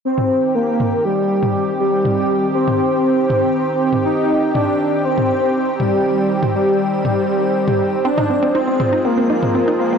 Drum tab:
T2 |-o----o----o----|o----o----o----o|----o----o----o-|---o----o----o--|

T2 |-o----o----o----|